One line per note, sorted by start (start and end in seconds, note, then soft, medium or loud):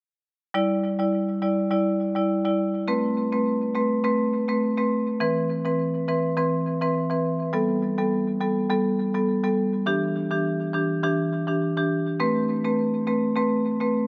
0.54 0.95 G3 medium
0.54 0.96 E4 medium
0.54 0.96 D5 loud
0.99 1.12 G3 medium
0.99 1.12 E4 medium
0.99 1.12 D5 medium
1.42 1.56 G3 medium
1.42 1.56 E4 medium
1.42 1.56 D5 medium
1.71 2.12 G3 medium
1.71 2.12 E4 medium
1.71 2.12 D5 loud
2.15 2.28 G3 medium
2.15 2.28 E4 medium
2.15 2.28 D5 medium
2.45 2.57 G3 medium
2.45 2.58 E4 medium
2.45 2.58 D5 medium
2.87 3.28 A3 loud
2.87 3.29 C4 medium
2.87 3.29 B4 loud
3.32 3.45 A3 medium
3.32 3.45 C4 medium
3.32 3.45 B4 medium
3.75 3.89 A3 medium
3.75 3.89 C4 medium
3.75 3.89 B4 medium
4.04 4.45 A3 loud
4.04 4.45 C4 medium
4.04 4.45 B4 loud
4.48 4.61 A3 medium
4.48 4.61 C4 medium
4.48 4.61 B4 medium
4.77 4.90 A3 medium
4.77 4.90 C4 medium
4.77 4.91 B4 medium
5.20 5.61 E3 loud
5.20 5.61 C4 medium
5.20 5.62 B4 loud
5.65 5.78 E3 medium
5.65 5.78 C4 medium
5.65 5.78 B4 medium
6.08 6.22 E3 medium
6.08 6.22 C4 medium
6.08 6.22 B4 medium
6.37 6.78 E3 medium
6.37 6.78 C4 medium
6.37 6.78 B4 loud
6.81 6.94 E3 medium
6.81 6.94 C4 medium
6.81 6.94 B4 medium
7.10 7.23 E3 medium
7.10 7.23 C4 medium
7.10 7.23 B4 medium
7.53 7.94 G3 loud
7.53 7.94 B3 medium
7.53 7.95 A4 loud
7.98 8.11 G3 medium
7.98 8.11 B3 medium
7.98 8.11 A4 medium
8.41 8.55 G3 medium
8.41 8.55 B3 medium
8.41 8.55 A4 medium
8.70 9.11 G3 medium
8.70 9.11 B3 medium
8.70 9.11 A4 loud
9.14 9.27 G3 medium
9.14 9.27 B3 medium
9.14 9.27 A4 medium
9.44 9.56 G3 medium
9.44 9.56 B3 medium
9.44 9.57 A4 medium
9.86 10.27 E3 medium
9.86 10.28 D4 medium
9.86 10.28 G4 loud
10.31 10.44 E3 medium
10.31 10.44 D4 medium
10.31 10.44 G4 medium
10.74 10.88 E3 medium
10.74 10.88 D4 medium
10.74 10.88 G4 medium
11.03 11.44 E3 medium
11.03 11.44 D4 medium
11.03 11.44 G4 loud
11.47 11.60 E3 medium
11.47 11.60 D4 medium
11.47 11.60 G4 medium
11.77 11.89 E3 medium
11.77 11.90 D4 medium
11.77 11.90 G4 medium
12.20 12.61 A3 loud
12.20 12.61 C4 medium
12.20 12.61 B4 loud
12.64 12.77 A3 medium
12.64 12.77 C4 medium
12.64 12.77 B4 medium
13.07 13.21 A3 medium
13.07 13.21 C4 medium
13.07 13.21 B4 medium
13.36 13.77 A3 medium
13.36 13.77 C4 medium
13.36 13.77 B4 loud
13.80 13.93 A3 medium
13.80 13.93 C4 medium
13.80 13.93 B4 medium